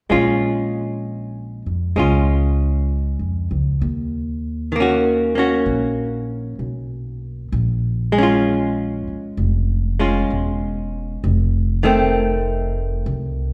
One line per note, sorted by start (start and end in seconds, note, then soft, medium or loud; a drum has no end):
0.10 1.61 A#1 medium
0.10 1.95 G#3 soft
0.10 1.96 C#4 soft
0.10 1.98 F4 soft
1.66 1.94 F2 soft
1.96 3.15 C#2 medium
1.96 3.81 G#3 soft
1.96 3.82 C#4 soft
1.96 3.82 F4 soft
3.19 3.48 F2 soft
3.51 3.79 C#2 medium
3.82 5.62 D#2 medium
4.72 7.50 D#3 soft
4.72 5.34 A#3 soft
4.80 5.37 C#4 soft
4.80 5.38 F#4 soft
5.35 7.51 A#3 soft
5.35 7.52 C#4 soft
5.35 7.52 F#4 soft
5.66 6.54 A#1 medium
6.59 7.47 B1 soft
7.52 9.03 A#1 medium
8.12 9.98 G#3 soft
8.18 9.99 C#4 soft
8.23 10.00 F4 soft
9.08 muted upright bass stroke soft
9.37 10.25 F1 medium
9.99 11.22 G#3 soft
9.99 11.22 C#4 soft
9.99 11.22 F4 soft
10.30 11.18 E1 medium
11.24 13.04 F1 medium
11.83 13.53 D#3 soft
11.83 13.53 A3 soft
11.83 13.53 C4 soft
13.06 13.53 C2 medium